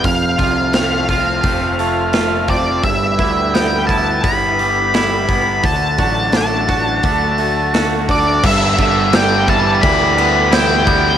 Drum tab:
CC |--------|--------|--------|xxxxxxxx|
HH |oooooooo|oooooooo|oooooooo|--------|
SD |--o---o-|--o---o-|--o---o-|--o---o-|
BD |oo-oo--o|oo-oo--o|oo-oo--o|oo-oo--o|